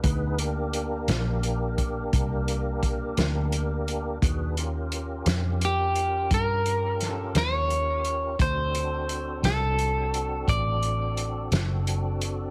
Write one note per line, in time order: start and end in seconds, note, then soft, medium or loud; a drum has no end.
0.03 1.06 D2 medium
0.03 0.39 B3 medium
0.03 0.39 D#4 soft
0.03 0.38 G#4 medium
0.03 0.38 B4 medium
0.03 kick medium
0.03 closed hi-hat medium
0.38 4.18 A#3 medium
0.38 4.18 D4 medium
0.38 4.18 G4 medium
0.38 closed hi-hat medium
0.73 closed hi-hat medium
1.08 2.10 A#1 medium
1.08 snare medium
1.08 closed hi-hat medium
1.43 closed hi-hat soft
1.78 kick medium
1.78 closed hi-hat medium
2.13 3.15 C2 medium
2.13 kick medium
2.13 closed hi-hat medium
2.48 closed hi-hat medium
2.83 kick medium
2.83 closed hi-hat soft
3.17 4.19 D2 medium
3.17 snare medium
3.17 closed hi-hat medium
3.52 closed hi-hat medium
3.88 closed hi-hat soft
4.22 5.23 D#2 medium
4.22 4.57 D4 soft
4.22 4.57 F#4 medium
4.22 4.57 G#4 medium
4.22 4.57 B4 medium
4.22 kick loud
4.22 closed hi-hat medium
4.57 8.36 C#4 medium
4.57 8.36 F4 soft
4.57 8.36 G4 medium
4.57 8.36 A#4 medium
4.57 closed hi-hat medium
4.92 closed hi-hat medium
5.26 6.28 F2 medium
5.26 snare medium
5.26 closed hi-hat medium
5.61 6.34 G4 medium
5.61 closed hi-hat medium
5.95 closed hi-hat medium
6.31 7.32 G2 medium
6.31 7.04 A#4 medium
6.31 kick medium
6.31 closed hi-hat medium
6.66 closed hi-hat medium
7.01 7.40 A4 medium
7.01 snare soft
7.01 closed hi-hat medium
7.35 8.36 D#2 medium
7.35 8.41 C#5 medium
7.35 snare loud
7.35 closed hi-hat medium
7.70 closed hi-hat medium
8.05 closed hi-hat soft
8.39 9.41 D2 medium
8.39 12.51 C4 medium
8.39 12.51 D4 medium
8.39 12.51 F#4 medium
8.39 12.51 A4 medium
8.39 9.48 C5 medium
8.39 kick medium
8.39 closed hi-hat medium
8.75 closed hi-hat medium
9.09 closed hi-hat soft
9.43 10.45 C2 medium
9.43 10.52 A4 medium
9.43 snare medium
9.43 closed hi-hat medium
9.79 closed hi-hat soft
10.14 closed hi-hat medium
10.48 11.49 A1 medium
10.48 12.51 D5 medium
10.48 kick medium
10.48 closed hi-hat medium
10.83 closed hi-hat medium
11.17 closed hi-hat medium
11.52 12.51 F#1 medium
11.52 snare medium
11.52 closed hi-hat medium
11.87 closed hi-hat medium
12.21 closed hi-hat medium